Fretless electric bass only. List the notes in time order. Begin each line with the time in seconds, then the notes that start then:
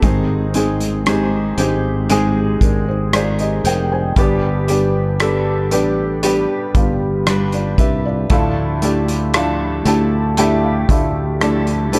0.02 G#1
1.58 G#1
2.61 G#1
3.64 F1
4.16 G1
5.71 A1
6.75 G1
7.78 C2
8.30 D2
9.85 D2
10.89 D2
11.92 B1